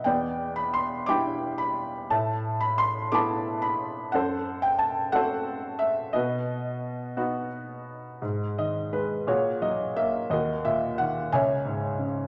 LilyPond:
<<
  \new Staff \with { instrumentName = "Felt piano" } { \time 6/8 \key b \phrygian \tempo 4. = 59 << { g''8. b''16 c'''8 d'''8. b''8 r16 | a''8. b''16 c'''8 d'''8. b''8 r16 | fis''8. g''16 a''8 fis''4 e''8 | dis''2 r4 |
\key gis \minor r8 dis''8 b'8 cis''8 dis''8 e''8 | dis''8 e''8 fis''8 gis''4 r8 | } \\ { <b d''>4. <g'' b''>4. | e''4. <a'' b''>4. | <a' c''>4. <a' c''>4. | <fis' b'>2 r4 |
r4. <fis' gis'>4. | <fis' ais'>4. <cis'' e''>4. | } >> }
  \new Staff \with { instrumentName = "Felt piano" } { \clef bass \time 6/8 \key b \phrygian e,4. <g d' e'>4. | a,4. <a b e'>4. | fis,4. <a c' fis'>4. | b,4. <b dis' fis'>4. |
\key gis \minor gis,8 dis8 gis8 ais,8 fis8 ais8 | dis,8 ais,8 dis8 cis,8 gis,8 cis8 | }
>>